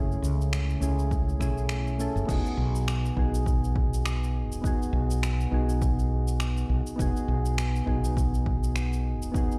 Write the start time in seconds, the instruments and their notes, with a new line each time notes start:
Already playing: fretless electric bass F#1, synth keys A3 C#4 E4 G#4
0.12 shaker
0.22 fretless electric bass C#2, shaker
0.41 shaker
0.53 finger snap, shaker
0.70 shaker
0.80 fretless electric bass C#2, synth keys A3 C#4 E4 G#4, shaker
0.99 shaker
1.11 kick, shaker
1.29 shaker
1.40 fretless electric bass B1, synth keys A3 C#4 E4 G#4, finger snap, kick, shaker
1.58 shaker
1.69 finger snap, shaker
1.87 shaker
1.98 synth keys A3 C#4 E4 A4, shaker
2.15 fretless electric bass F#1, shaker
2.26 fretless electric bass E1, synth keys B3 D#4 F#4, kick, crash, shaker
2.32 synth keys G#4
2.46 shaker
2.57 fretless electric bass B1
2.76 shaker
2.88 finger snap, shaker
3.05 shaker
3.16 fretless electric bass B1, synth keys B3 D#4 F#4 G#4, kick
3.35 shaker
3.46 kick, shaker
3.64 shaker
3.76 kick
3.94 shaker
4.06 finger snap, shaker
4.24 shaker
4.50 fretless electric bass E1, shaker
4.62 synth keys B3 D#4 F#4, kick, shaker
4.67 synth keys G#4
4.82 shaker
4.93 fretless electric bass B1
5.11 shaker
5.23 finger snap, shaker
5.41 shaker
5.51 fretless electric bass B1, synth keys B3 D#4 F#4 G#4
5.69 shaker
5.82 kick, shaker
5.99 shaker
6.28 shaker
6.40 finger snap, shaker
6.57 shaker
6.69 fretless electric bass B1
6.87 shaker
6.96 fretless electric bass E1, synth keys B3 D#4 F#4, kick
7.00 synth keys G#4, shaker
7.16 shaker
7.28 fretless electric bass B1
7.46 shaker
7.58 finger snap, shaker
7.76 shaker
7.86 fretless electric bass B1, synth keys B3 D#4 F#4 G#4, kick
8.04 shaker
8.17 kick, shaker
8.34 shaker
8.46 kick
8.64 shaker
8.76 finger snap, shaker
8.93 shaker
9.21 fretless electric bass E1, shaker
9.32 synth keys B3 D#4 F#4, kick, shaker
9.37 synth keys G#4
9.52 shaker